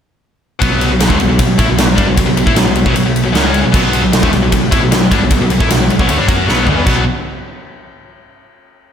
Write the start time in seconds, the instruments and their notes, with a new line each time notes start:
0.59 picked electric bass B1, distorted electric guitar B2 F#3 B3, kick, ride
0.81 ride
0.89 picked electric bass B1, distorted electric guitar B2 F#3
1.00 picked electric bass B1, distorted electric guitar B2 F#3, snare, ride
1.08 picked electric bass D2, distorted electric guitar D3 A3, kick
1.19 picked electric bass B1, distorted electric guitar B2 F#3, ride
1.28 picked electric bass B1, distorted electric guitar B2 F#3
1.38 picked electric bass B1, distorted electric guitar B2 F#3, kick, ride
1.58 picked electric bass A2, distorted electric guitar A3 E4, kick, ride
1.69 picked electric bass B1, distorted electric guitar B2 F#3
1.78 picked electric bass B1, distorted electric guitar B2 F#3, snare, ride
1.95 picked electric bass G2, distorted electric guitar G3 D4, kick, ride
2.07 picked electric bass B1, distorted electric guitar B2 F#3
2.16 picked electric bass B1, distorted electric guitar B2 F#3, kick, ride
2.26 picked electric bass B1, distorted electric guitar B2 F#3
2.37 picked electric bass B1, distorted electric guitar B2 F#3, ride
2.46 picked electric bass A2, distorted electric guitar A3 E4, kick
2.56 picked electric bass B1, distorted electric guitar B2 F#3, snare, ride
2.66 picked electric bass B1, distorted electric guitar B2 F#3
2.75 picked electric bass B1, distorted electric guitar B2 F#3, ride
2.86 picked electric bass B1, distorted electric guitar B2 F#3, kick
2.96 picked electric bass B1, distorted electric guitar B2 F#3, ride
3.05 picked electric bass B1, distorted electric guitar B2 F#3
3.16 ride
3.24 picked electric bass B1, distorted electric guitar B2 F#3
3.32 picked electric bass C#2, distorted electric guitar C#3 G#3 C#4, snare, ride
3.54 ride
3.61 distorted electric guitar B2 F#3
3.65 picked electric bass B1, distorted electric guitar B2
3.72 picked electric bass B1, distorted electric guitar B2 F#3 B3, kick, crash
3.93 ride
4.02 picked electric bass B1, distorted electric guitar B2 F#3
4.13 picked electric bass B1, distorted electric guitar B2 F#3, snare, ride
4.22 picked electric bass D2, distorted electric guitar D3 A3, kick
4.33 picked electric bass B1, distorted electric guitar B2 F#3, snare, ride
4.43 picked electric bass B1, distorted electric guitar B2 F#3
4.52 picked electric bass B1, distorted electric guitar B2 F#3, kick, ride
4.71 picked electric bass A2, distorted electric guitar A3 E4, kick, ride
4.81 picked electric bass B1, distorted electric guitar B2 F#3
4.91 picked electric bass B1, distorted electric guitar B2 F#3, snare, ride
5.12 picked electric bass G2, distorted electric guitar G3 D4, kick, ride
5.22 picked electric bass B1, distorted electric guitar B2 F#3
5.30 picked electric bass B1, distorted electric guitar B2 F#3, kick, ride
5.40 picked electric bass B1, distorted electric guitar B2 F#3
5.50 picked electric bass B1, distorted electric guitar B2 F#3, ride
5.60 picked electric bass A2, distorted electric guitar A3 E4, kick
5.70 picked electric bass B1, distorted electric guitar B2 F#3, snare, ride
5.81 picked electric bass B1, distorted electric guitar B2 F#3
5.90 picked electric bass B1, distorted electric guitar B2 F#3, ride
5.99 picked electric bass B1, distorted electric guitar B2 F#3, kick
6.09 picked electric bass D2, distorted electric guitar D3 A3, ride
6.18 picked electric bass G2, distorted electric guitar G3 D4
6.27 picked electric bass F#2, distorted electric guitar F#3 C#4 F#4, kick, ride
6.47 picked electric bass B1, distorted electric guitar B2 F#3 B3, snare
6.67 picked electric bass D2, distorted electric guitar D3 A3, floor tom
6.75 picked electric bass E2, distorted electric guitar E3 B3
6.85 picked electric bass B1, distorted electric guitar B2 F#3 B3, kick, crash